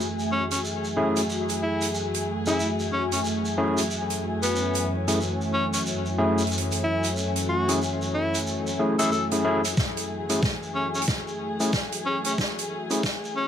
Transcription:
Already playing: F#2 E3 A3 F#4 G#4 E5 G#5
0.00 shekere
0.19 shekere
0.32 C#4
0.51 C#4, closed hi-hat, shekere
0.65 shekere
0.84 shekere
0.97 A3 C#4 E4 G#4
1.16 closed hi-hat, shekere
1.29 shekere
1.49 closed hi-hat, shekere
1.62 E4
1.81 closed hi-hat, shekere
1.94 shekere
2.14 closed hi-hat, shekere
2.46 A3 C#4 E4 G#4, shekere
2.60 shekere
2.79 shekere
2.92 C#4
3.12 C#4, closed hi-hat, shekere
3.25 shekere
3.45 shekere
3.58 A3 C#4 E4 G#4
3.77 closed hi-hat, shekere
3.90 shekere
4.10 closed hi-hat, shekere
4.43 B3, closed hi-hat, shekere
4.56 C#4, shekere
4.74 closed hi-hat, shekere
5.08 A3 C#4 E4 G#4, closed hi-hat, shekere
5.21 shekere
5.41 shekere
5.53 C#4
5.73 C#4, closed hi-hat, shekere
5.86 shekere
6.06 shekere
6.18 A3 C#4 E4 G#4
6.38 closed hi-hat, shekere
6.47 closed hi-hat
6.51 shekere
6.58 closed hi-hat
6.71 closed hi-hat, shekere
6.84 E4
7.03 closed hi-hat, shekere
7.17 shekere
7.36 closed hi-hat, shekere
7.49 F#4
7.69 A3 C#4 E4 G#4, closed hi-hat, shekere
7.82 shekere
8.02 shekere
8.14 E4
8.34 closed hi-hat, shekere
8.47 shekere
8.67 shekere
8.79 A3 C#4 E4 G#4
8.99 A3 C#4 E4 G#4 A4, closed hi-hat, shekere
9.12 A4, shekere
9.31 A3 C#4 E4 G#4, closed hi-hat, shekere
9.45 A3 C#4 E4 G#4
9.65 closed hi-hat, shekere
9.77 G#4, kick, snare, shekere
9.97 closed hi-hat, shekere
10.29 A3 C#4 E4 G#4, closed hi-hat, shekere
10.43 kick, snare, shekere
10.63 shekere
10.75 C#4
10.95 C#4, shekere
11.02 closed hi-hat
11.08 kick, snare, shekere
11.27 shekere
11.60 A3 C#4 E4 G#4, closed hi-hat, shekere
11.73 kick, snare, shekere
11.92 closed hi-hat, shekere
12.06 C#4
12.24 C#4, closed hi-hat, shekere
12.38 kick, snare, shekere
12.58 closed hi-hat, shekere
12.90 A3 C#4 E4 G#4, closed hi-hat, shekere
13.03 kick, snare, shekere
13.24 shekere
13.36 C#4

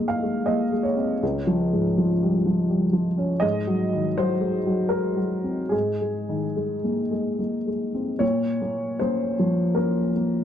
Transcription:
Already playing: G#2 D#3 G#3 A#3 D#5
0.08 F5
0.23 G#3
0.46 A#3 D#5
0.72 G#3
0.83 C#5
0.97 C4
1.23 C#2
1.47 F3
1.73 G#2
1.98 F3
2.22 G3
2.46 F3
2.70 G3
2.93 F3
3.18 C#4
3.40 G#2 D#5
3.67 F#3
3.93 D#3
4.18 F#3 C5
4.41 G#3
4.66 F#3
4.89 G#3 A#4
5.16 F#3
5.44 C4
5.69 G#2 G#4
6.01 G#3
6.29 D#3
6.56 G#3
6.84 A#3
7.11 G#3
7.39 A#3
7.67 G#3
7.94 C4
8.19 A#2 C#5
8.62 A#3
8.99 A#3 C#4 C5
9.39 F3
9.75 A#3 C#4 A#4
10.16 A#3

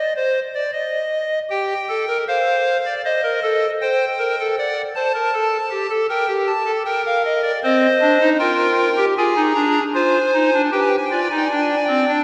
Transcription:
Already playing: D#5
0.16 C5
0.55 D5
0.72 D#5
1.50 G4 G5
1.89 A4
2.08 A#4
2.28 C5 F5
2.86 D5
3.05 C5 D#5
3.23 A#4
3.43 A4
3.81 C5 G5
4.19 A#4
4.40 A4
4.58 D5 F#5
4.95 C5 A5
5.15 A#4
5.34 A4
5.70 G4
5.90 A4
6.09 A#4 G5
6.28 G4
6.47 A5
6.66 A4
6.85 A#4 G5
7.06 F5
7.25 D#5
7.43 D5
7.63 C4 C5 D#5
8.01 D4
8.20 D#4
8.39 F4 A#4 G5
8.97 G4
9.17 F4 G#4 G#5
9.36 D#4
9.55 D4 A#5
9.94 F4 C5 G#5
10.33 D#4
10.53 D4
10.72 G4 B4 G5
10.80 G#5
10.88 G5
10.96 G#5
11.05 G5
11.11 F4 D5 G#5
11.21 G5
11.29 D#4 G#5
11.37 G5
11.45 G#5
11.51 D4 G5
11.61 G#5
11.69 G5
11.76 G#5
11.84 C4 G5
12.07 D4

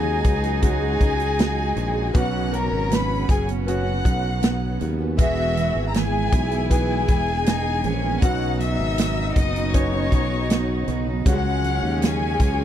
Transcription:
Already playing: D#2 C#3 F#3 G#3 C#4 D#4 F#4 G#4 G#5
0.05 C#4 F#4 G#4
0.24 C#2, kick, closed hi-hat
0.43 C#4 F#4 G#4, closed hi-hat
0.62 G#3 C#4 F#4 G#4 G#5, kick, closed hi-hat
0.81 C#4 F#4 G#4
1.00 C#2 F#3 C#4 F#4 G#4, kick, closed hi-hat
1.20 closed hi-hat
1.38 C#3 F#3 C#4 F#4 G#4, snare, closed hi-hat
1.75 A#1 F#3 C#4 F#4 G#4, closed hi-hat
1.94 C#4 F#4 G#4
2.13 B1 B2 C#3 F#3 B3 C#4 F#4 F#5 F#6, kick, closed hi-hat
2.51 F#3 B3 C#4 F#4 A#4 A#5, closed hi-hat
2.72 G#1
2.89 B2 F#3 B3 C#4 F#4 B4 B5, snare, closed hi-hat
3.08 B3 C#4 F#4
3.29 F#1 G#4 G#5, kick, closed hi-hat
3.46 B3 C#4 F#4, closed hi-hat
3.66 B3 C#4 F#4 F#5 F#6, closed hi-hat
3.84 B3 C#4 F#4
4.02 B1 F#3 B3 C#4 F#4, kick, closed hi-hat
4.41 B2 F#3 B3 C#4 F#4, snare, closed hi-hat
4.80 D#2 F#3 B3 C#4 F#4, closed hi-hat
4.98 B3 C#4 F#4
5.18 E1 E3 G#3 B3 E4 F#4 G#4 E5 E6, kick, closed hi-hat
5.56 E3 B3 E4 G#4, closed hi-hat
5.75 G#1
5.89 A#5
5.93 E3 B3 E4 G#4 G#5, snare, closed hi-hat
6.13 B3 E4 G#4
6.32 B1, kick, closed hi-hat
6.51 B3 E4 G#4, closed hi-hat
6.70 E3 B3 G#4 G#5, kick, closed hi-hat
6.89 B3 E4 G#4
7.08 E1 E3 B3 E4 G#4, kick, closed hi-hat
7.46 E3 B3 D#4 G#4, snare, closed hi-hat
7.83 A#1 E3 B3 C#4 E4 G#4, closed hi-hat
8.03 B3 E4 G#4
8.22 B1 B2 C#3 F#3 B3 C#4 D#4 F#4 F#5 F#6, kick, closed hi-hat
8.59 F#3 B3 C#4 F#4 E5 E6, closed hi-hat
8.79 G#1
8.98 B2 F#3 B3 C#4 F#4, snare, closed hi-hat
9.17 B3 C#4 F#4
9.36 F#1 D#5 D#6, kick, closed hi-hat
9.55 B3 C#4 F#4, closed hi-hat
9.73 B3 C#4 D#4 C#5 C#6, kick, closed hi-hat
9.92 B3 C#4 F#4
10.12 B1 F#3 B3 C#4 F#4, kick, closed hi-hat
10.50 B2 F#3 B3 C#4 F#4, snare, closed hi-hat
10.88 B1 F#3 B3 C#4 F#4, closed hi-hat
11.07 B3 C#4 F#4
11.26 C#2 C#3 F#3 G3 G#3 C#4 F#4 G#4 F#6, kick, closed hi-hat
11.30 G#3 F#5
11.64 F#3 C#4 F#4 G#4, closed hi-hat
11.83 D#2
12.01 C#3 F#3 C#4 F#4 G#4 G#5, snare, closed hi-hat
12.21 F#4 G#4
12.40 C#2, kick, closed hi-hat
12.59 C#4 F#4 G#4

